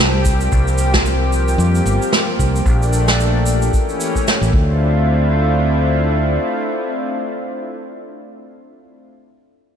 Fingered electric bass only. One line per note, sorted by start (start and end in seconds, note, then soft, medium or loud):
0.00 0.48 C2 medium
0.52 1.55 C2 medium
1.58 1.80 F2 medium
1.86 1.97 G1 medium
2.39 2.61 C2 medium
2.65 3.69 A#1 medium
4.41 4.50 A1 medium
4.53 6.37 D2 medium